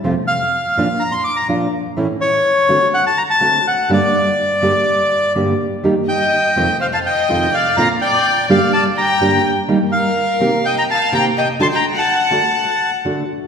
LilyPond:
<<
  \new Staff \with { instrumentName = "Bandoneon" } { \time 4/4 \key g \minor \tempo 4 = 125 r8 f''4. bes''16 c'''16 d'''16 bes''8 r8. | r8 cis''4. fis''16 a''16 bes''16 a''8. fis''8 | d''2. r4 | r8 g''4. f''16 a''16 g''4 f''8 |
bes''8 g''4 f''8 a''8 bes''4 r8 | r8 f''4. g''16 bes''16 a''8 bes''8 g''8 | c'''16 bes''8 a''2 r4 r16 | }
  \new Staff \with { instrumentName = "Violin section" } { \time 4/4 \key g \minor r1 | r1 | r1 | r8 ees''4. c''16 f''16 ees''4 d''8 |
f''8 d''4 d''8 d''8 g''4 r8 | r8 bes'4. ees''16 g''16 f''8 g''8 ees''8 | a''16 g''8 fis''2 r4 r16 | }
  \new Staff \with { instrumentName = "Nylon-string guitar" } { \time 4/4 \key g \minor <f, c f a c' f'>8 r4 <bes, f bes d' f'>8 r4 <bes, f bes d' f'>8 r8 | <a, e a cis' e'>8 r4 <d a c' fis'>8 r4 <d a c' fis'>8 r8 | <g, d g bes d' g'>8 r4 <g, d g bes d' g'>8 r4 <g, d g bes d' g'>8 r8 | <ees g bes ees' g'>8 r4 <f, c ees a c' f'>8 r4 <f, c ees a c' f'>8 r8 |
<bes, d bes c' f'>8 r4 <g, d g bes d' g'>8 r4 <g, d g bes d' g'>8 r8 | <ees g bes ees' g'>8 r4 <c ees bes c' g'>8 r4 <c ees bes c' g'>8 r8 | <d a d' fis'>8 r4 <d a d' fis'>8 r4 <d a d' fis'>8 r8 | }
>>